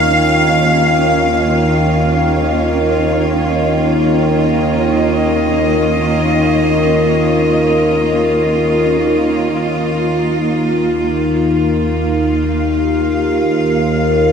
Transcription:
Already playing: D#2 D#3 A#3 C#4 F4 C#5 F5
4.30 D#5
9.00 D#2 D#3
11.88 F5

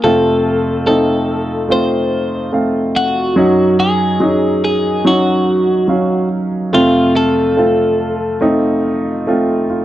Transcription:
0.04 F2 C3 A3 C4 F4 A4
0.86 A3 C4 D#4 A4
1.69 A3 C4 F4 C5
2.52 A3 C4 F5
2.96 F#4
3.36 F#2 F#3 C#4 D#4
3.80 G#4
4.20 F#3 C#4 D#4
4.65 G#4
5.05 F#3 C#4 D#4 F#4
5.88 F#3 C#4 F5
6.73 F2 C3 A3 C4 F4
7.16 A4
7.57 A3 C4 F4
8.41 A3 C4 D#4
9.27 A3 C4 F4
9.70 F4

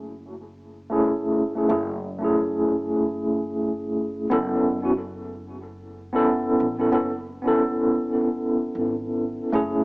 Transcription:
Already playing: F#1
0.90 A3 C#4 E4 G#4
1.55 A3 C#4 E4 G#4
1.69 F#1 A3 C#4 E4 G#4
2.19 A3 C#4 E4
2.25 G#4
4.30 F#1 B3 C#4 E4 A4
4.82 B3 C#4 E4 F#4
6.13 B3 C#4 E4 A4
6.60 A1
6.78 B3 C#4 E4 A4
6.92 F#1 B3 C#4 E4 A4
7.42 B3 C#4 E4
7.48 A4
8.75 G#1
9.52 F#1 A3 C#4 E4 G#4

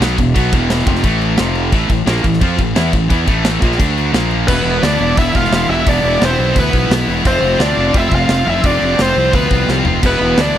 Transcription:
0.00 B1 B2 F#3 B3, snare, crash
0.18 E1 E2 B2, kick, crash
0.34 B1 B2 F#3 B3, kick, crash
0.51 E1 E2 B2 E3, kick, crash
0.70 snare, crash
0.79 snare
0.86 F1 F2 C3 F3, kick, crash
0.96 snare
1.03 A1 A2 E3 A3, kick, crash
1.21 crash
1.37 F1 F2 C3 F3, snare, crash
1.55 crash
1.72 A1 A2 E3 A3, kick, crash
1.90 A1 A2 E3, kick, crash
2.06 A#1 A#2 F3 A#3, snare, crash
2.17 snare
2.24 A1 A2 E3, kick, crash
2.33 snare
2.41 F2 F3 C4 F4, kick, crash
2.59 A1 A2 E3, kick, crash
2.75 E2 E3 B3 E4, snare, crash
2.93 A1 A2 E3, kick, crash
3.10 E2 E3 B3 E4, kick, crash
3.27 A1 A2 E3 A3, kick, crash
3.44 snare, crash
3.61 A#1 A#2 F3 A#3, kick, crash
3.72 snare
3.78 D2 D3 A3 D4, kick, crash
3.98 crash
4.13 A#1 A#2 F3 A#3, snare, crash
4.31 crash
4.47 E1 E2 B2 E3 B3 E4 B4, kick, crash
4.56 B3 E4
4.63 E1 B3 E4
4.71 B3 E4
4.78 B3 E4
4.82 D2 B3 D4 E4 D5, snare, open hi-hat
4.92 B3 E4
5.00 E1 B3 E4
5.08 B3 E4
5.17 E1 B3 E4 E5, kick, open hi-hat
5.24 B3 E4
5.31 E1 B3 E4
5.35 B3 F4 F5, kick
5.40 E4
5.45 B3 E4, snare
5.51 E1 B3, snare, open hi-hat
5.55 E4
5.60 B3 E4
5.68 E1 E2 B2 E3 B3 E4 E5
5.75 B3 E4
5.85 E1 E2 B2 B3 D4 E4, kick, open hi-hat
5.89 E3 B3 D5
5.94 E4
6.01 E1 B3 E4
6.08 B3 E4
6.17 B3 E4
6.21 E1 B3 C4 E4 C5, snare, open hi-hat
6.31 B3 E4
6.38 B1 B3 E4
6.46 B3 E4
6.54 D2 B3 E4, kick, open hi-hat
6.59 B3 B4
6.63 E4
6.69 B3 E4, kick
6.73 B1
6.78 B3 E4
6.85 B3 E4
6.90 B1 B3, snare, open hi-hat
6.94 E4
7.01 B3 E4
7.06 E1 E2 B2 E3 B3 E4
7.15 B3 E4
7.22 F1 F2 C3 F3 C4 F4, kick, open hi-hat
7.27 C4 C5
7.32 C4 F4
7.39 F1 C4 F4
7.47 C4 F4
7.54 C4 F4
7.59 D2 C4 D4 F4 D5, snare, open hi-hat
7.70 C4 F4
7.77 F1 C4 F4
7.86 C4 F4
7.93 F1 C4 E4 F4 E5, kick, open hi-hat
8.01 C4 F4
8.09 F1 C4 F4, kick
8.15 C4 F4 F5
8.23 C4 F4
8.29 F1 C4 F4, snare, open hi-hat
8.39 C4 F4
8.44 F1 F2 C3 F3 C4 E4 F4
8.50 C4 E5
8.55 F4
8.62 F1 F2 C3 F3 C4 D4 F4 D5, kick, open hi-hat
8.70 C4 F4
8.78 F1 C4 F4
8.86 C4 F4
8.93 C4 F4
8.99 F1 C4 F4 C5, snare, open hi-hat
9.08 C4 F4, snare
9.16 C2 C4 F4
9.24 C4 F4
9.32 D2 B3 C4 F4 B4, kick, open hi-hat
9.40 C4 F4
9.47 C2 C4 F4, kick
9.56 C4 F4
9.63 C4 F4
9.68 C2 C4 F4, snare
9.78 C4 F4
9.83 F1 F2 C3 F3 C4 F4, floor tom
9.95 C4 F4
10.01 E1 E2 B2 E3 B3 E4, kick, crash
10.05 B3 B4
10.10 B3 E4
10.18 E1 B3 E4
10.26 B3 E4
10.33 B3 E4
10.37 D2 B3 D4 E4 D5, snare, open hi-hat
10.49 B3 E4
10.55 E1

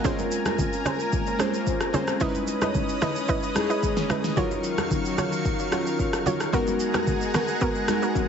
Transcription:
Already playing: D#5
0.04 G#3 A#3 C4 C#4 F4 G#4 A#4 C5 G#5 A#5, kick, low conga, shaker
0.19 high conga, shaker
0.31 shaker
0.46 cross-stick, high conga, shaker
0.58 kick, low conga, shaker
0.73 shaker
0.85 C#4 G#4 C5, cross-stick, high conga, low conga, shaker
1.00 shaker
1.13 kick, shaker
1.27 shaker
1.39 G#3 C4 C#4 F4 G#4 C5, cross-stick, high conga, shaker
1.54 shaker
1.67 kick, shaker
1.80 cross-stick, shaker
1.93 G#3 C4 C#4 F4 G#4 C5, high conga, low conga, shaker
2.08 cross-stick, shaker
2.20 G#3 C#4 D#4 E4 A#4 B4 D#5 D#6, kick, low conga, shaker
2.29 B4
2.35 high conga, shaker
2.47 shaker
2.62 E4 B4 D#5, cross-stick, high conga, shaker
2.75 kick, low conga, shaker
2.89 shaker
3.02 E4 B4 D#5, cross-stick, snare, high conga, low conga, shaker
3.16 shaker
3.29 E4 B4 D#5, kick, shaker
3.43 shaker
3.55 G#3 C#4 D#4 E4 G#4, cross-stick, high conga, shaker
3.70 E4 B4 D#5, shaker
3.83 kick, shaker
3.97 snare, shaker
4.09 G#3 C#4 D#4 E4 B4 D#5, cross-stick, high conga, low conga, shaker
4.24 snare, shaker
4.36 D#3 F#3 C#4 D#4 F4 F#4 A#4 C#5 F5 C#6, kick, low conga, shaker
4.51 high conga, shaker
4.64 shaker
4.78 cross-stick, high conga, shaker
4.91 kick, low conga, shaker
5.05 shaker
5.18 F4 F#4 C#5, cross-stick, high conga, low conga, shaker
5.32 shaker
5.45 kick, shaker
5.59 shaker
5.71 F#3 C#4 D#4 F4 F#4 A#4 C#5, cross-stick, high conga, shaker
5.87 shaker
5.99 kick, shaker
6.13 cross-stick, shaker
6.25 F#3 C#4 D#4 F4 F#4 A#4 C#5, high conga, low conga, shaker
6.40 cross-stick, shaker
6.52 G#3 B3 D#4 F#4 A#4 F#5 G#5 A#5, kick, low conga, shaker
6.67 high conga, shaker
6.80 shaker
6.94 B3 F#4 A#4, cross-stick, high conga, shaker
7.07 kick, low conga, shaker
7.21 shaker
7.34 B3 F#4 A#4, cross-stick, snare, high conga, low conga, shaker
7.48 shaker
7.61 B3 F#4 A#4, kick, shaker
7.75 shaker
7.88 G#3 B3 D#4 F#4 A#4, cross-stick, high conga, shaker
8.02 B3 F#4 A#4, shaker
8.15 kick, high tom, shaker

